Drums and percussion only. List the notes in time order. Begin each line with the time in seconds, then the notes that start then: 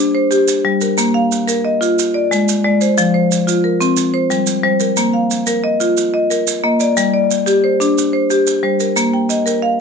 0.31 maracas
0.48 maracas
0.81 maracas
0.98 maracas
1.32 maracas
1.48 maracas
1.82 maracas
1.99 maracas
2.32 maracas
2.49 maracas
2.81 maracas
2.98 maracas
3.32 maracas
3.48 maracas
3.81 maracas
3.97 maracas
4.31 maracas
4.47 maracas
4.80 maracas
4.97 maracas
5.31 maracas
5.47 maracas
5.80 maracas
5.97 maracas
6.31 maracas
6.47 maracas
6.80 maracas
6.97 maracas
7.31 maracas
7.47 maracas
7.81 maracas
7.98 maracas
8.30 maracas
8.47 maracas
8.80 maracas
8.96 maracas
9.30 maracas
9.47 maracas